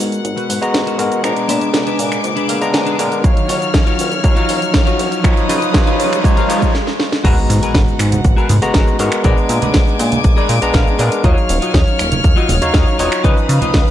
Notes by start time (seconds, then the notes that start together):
Already playing: G#3 B3 F#4 A#4 F#5, riser
0.00 G#2, cabasa
0.12 closed hi-hat, cabasa
0.24 G#1, closed hi-hat, cabasa
0.36 B3 F#4 B4, closed hi-hat, cabasa
0.49 G#2, open hi-hat, cabasa
0.61 G#1 G#3 B3 F#4 A#5, closed hi-hat, cabasa
0.74 G#1, snare, closed hi-hat, cabasa
0.86 B3 F#4 A#4, closed hi-hat, cabasa
0.98 G#2 G#3 B3 F#4 A#4, open hi-hat, cabasa
1.12 closed hi-hat, cabasa
1.23 A#1 G#3 B3 D4 G#5 A#5 D6, finger snap, closed hi-hat, cabasa
1.36 closed hi-hat, cabasa
1.48 A#2 D4 G#4 B4, open hi-hat, cabasa
1.61 A#1, closed hi-hat, cabasa
1.74 A#1, snare, closed hi-hat, cabasa
1.86 D4 G#4 B4, closed hi-hat, cabasa
1.99 A#2, open hi-hat, cabasa
2.12 finger snap, closed hi-hat, cabasa
2.24 A#1, closed hi-hat, cabasa
2.36 D4 G#4 B4, closed hi-hat, cabasa
2.49 A#2 F5, open hi-hat, cabasa
2.61 A#1 G#3 B3 D4 A#5, closed hi-hat, cabasa
2.74 A#1 G#5, snare, closed hi-hat, cabasa
2.86 D4 G#4 B4, closed hi-hat, cabasa
2.99 A#2 G#3 B3 D4 A#4 A#5, open hi-hat, cabasa
3.12 closed hi-hat, cabasa
3.23 D#2 F#3 D#4 C#5 F5 F6, kick, closed hi-hat, cabasa
3.37 closed hi-hat, cabasa
3.48 D#1 F4 F#4 C#5, open hi-hat, cabasa
3.62 closed hi-hat, cabasa
3.74 D#2, kick, snare, closed hi-hat, cabasa
3.86 F4 F#4 C#5, closed hi-hat, cabasa
3.99 D#1, open hi-hat, cabasa
4.12 closed hi-hat, cabasa
4.23 D#2 F#3 D#4 C#5 F5, kick, closed hi-hat, cabasa
4.36 F4 F#4 C#5, closed hi-hat, cabasa
4.49 D#1, open hi-hat, cabasa
4.62 D#2, closed hi-hat, cabasa
4.74 D#2, kick, snare, closed hi-hat, cabasa
4.86 F4 F#4 C#5, closed hi-hat, cabasa
4.99 D#1, open hi-hat, cabasa
5.12 closed hi-hat, cabasa
5.23 C#2 F3 D#4 F4 B4 C#5 F5 D#6, finger snap, kick, closed hi-hat, cabasa
5.37 closed hi-hat, cabasa
5.48 C#3 D#4 F4 B4, open hi-hat, cabasa
5.62 C#2, closed hi-hat, cabasa
5.73 C#2 F3 D#4 F4 C#5, kick, snare, closed hi-hat, cabasa
5.86 D#4 F4 B4, closed hi-hat, cabasa
5.99 C#3, open hi-hat, cabasa
6.13 finger snap, closed hi-hat, cabasa
6.23 C#2 F3 D#4 F4 C#5, kick, closed hi-hat, cabasa
6.36 D#4 F4 A#4, closed hi-hat, cabasa
6.48 C#3 F3 D#4 F4 C#5, open hi-hat, cabasa
6.62 C#2, kick, closed hi-hat, cabasa
6.75 snare
6.87 snare
7.00 snare
7.12 snare
7.24 G#1 G#3 B3 F#4 G#4 A#4 B4 F#5 A#5, kick, closed hi-hat, crash, impact, cabasa, shaker
7.37 cabasa, shaker
7.49 G#2, muted clean electric guitar stroke, open hi-hat, cabasa, shaker
7.62 F#4 G#4 A#4 B4, closed hi-hat, cabasa, shaker
7.75 G#1, kick, snare, closed hi-hat, cabasa, shaker
7.88 cabasa, shaker
7.99 G#2, finger snap, muted clean electric guitar stroke, open hi-hat, cabasa, shaker
8.12 closed hi-hat, low conga, cabasa, shaker
8.24 G#1, kick, closed hi-hat, cabasa, shaker
8.37 F#4 G#4 A#4 B4, cabasa, shaker
8.49 G#2, open hi-hat, low conga, cabasa, shaker
8.62 G#1 G#3 B3 F#4 A#5, closed hi-hat, high bongo, cabasa, shaker
8.74 G#1 F#4 G#4 A#4 C#5, kick, snare, closed hi-hat, cabasa, shaker
8.87 cabasa, shaker
8.99 G#2 G#3 B3 F#4 G#4 A#4 C#5, open hi-hat, high bongo, cabasa, shaker
9.12 finger snap, closed hi-hat, cabasa, shaker
9.23 A#1 G#3 B3 D4 G#4 A#4 B4 D5 G#5 A#5 D6, kick, closed hi-hat, cabasa, shaker
9.37 cabasa, shaker
9.49 A#2, muted clean electric guitar stroke, open hi-hat, cabasa, shaker
9.61 A#1 G#4 A#4 B4 D5, closed hi-hat, low conga, cabasa, shaker
9.74 A#1, kick, snare, closed hi-hat, cabasa, shaker
9.88 cabasa, shaker
9.99 A#2, muted clean electric guitar stroke, open hi-hat, high bongo, cabasa, shaker
10.12 closed hi-hat, low conga, cabasa, shaker
10.24 A#1, kick, closed hi-hat, cabasa, shaker
10.36 G#4 A#4 B4 D5, cabasa, shaker
10.49 A#2, open hi-hat, cabasa, shaker
10.62 A#1 G#3 B3 D4 A#5, closed hi-hat, cabasa, shaker
10.73 A#1 G#4 A#4 B4 F5, kick, snare, closed hi-hat, cabasa, shaker
10.87 cabasa, shaker
10.99 A#2 G#3 B3 D4 G#4 A#4 B4 D5, open hi-hat, cabasa, shaker
11.12 closed hi-hat, cabasa, shaker
11.23 D#2 F#3 D#4 F4 F#4 C#5 D#5 F5 F6, kick, closed hi-hat, cabasa, shaker
11.37 cabasa, shaker
11.49 D#1, muted clean electric guitar stroke, open hi-hat, cabasa, shaker
11.61 F4 F#4 C#5 D#5, closed hi-hat, cabasa, shaker
11.74 D#2, kick, snare, closed hi-hat, cabasa, shaker
11.87 cabasa, shaker
11.99 D#1, finger snap, muted clean electric guitar stroke, open hi-hat, cabasa, shaker
12.12 closed hi-hat, low conga, cabasa, shaker
12.23 D#2, kick, closed hi-hat, cabasa, shaker
12.36 F4 F#4 C#5 D#5, cabasa, shaker
12.49 D#1, open hi-hat, low conga, cabasa, shaker
12.61 D#2 F#3 D#4 C#5 F5, closed hi-hat, high bongo, cabasa, shaker
12.73 D#2 F4 F#4 C#5 D#5, kick, snare, closed hi-hat, cabasa, shaker
12.86 cabasa, shaker
12.98 D#1 F#3 D#4 F4 F#4 C#5 D#5, open hi-hat, high bongo, cabasa, shaker
13.12 finger snap, closed hi-hat, cabasa, shaker
13.23 C#2 F3 C#4 D#4 F4 B4 C#5 D#5 F5 D#6, kick, closed hi-hat, cabasa, shaker
13.37 cabasa, shaker
13.48 C#3, muted clean electric guitar stroke, open hi-hat, cabasa, shaker
13.61 C#2 F4 B4 C#5 D#5, closed hi-hat, low conga, cabasa, shaker
13.74 C#2, kick, snare, closed hi-hat, cabasa, shaker
13.87 cabasa, shaker